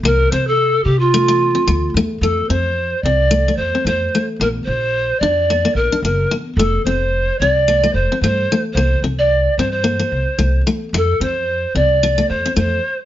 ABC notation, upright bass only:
X:1
M:4/4
L:1/16
Q:"Swing 16ths" 1/4=110
K:F
V:1 name="Upright bass" clef=bass
C,,2 C,4 C,6 D,,2 E,,2 | F,,2 F,,4 C,,4 F,, z F,,2 z2 | B,,,2 B,,,4 F,,4 B,,, z _G,,,2 z2 | F,,,2 F,,,4 C,,4 F,,, z G,,2 z2 |
C,,2 C,,4 G,,4 C,, z C,,2 z2 | F,,2 F,,4 C,,4 F,, z F,,2 z2 |]